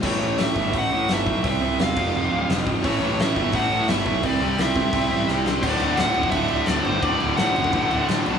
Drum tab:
CC |x---------------|------x---------|----------------|----------------|
HH |----o---o---o---|o---o-------o---|o---o---o---o---|o---o---o-------|
SD |----o-------o---|----o-------o---|----o-------o---|----o-------o-o-|
BD |o-----o-o-----o-|o-----o-------o-|o-----o-o-----o-|o-----o-o-------|

CC |x-x-x-x-x-x-x-x-|x-x-x-x-x-x-x-x-|
HH |----------------|----------------|
SD |----o-------o---|----o-------o---|
BD |o------oo-------|o------oo-------|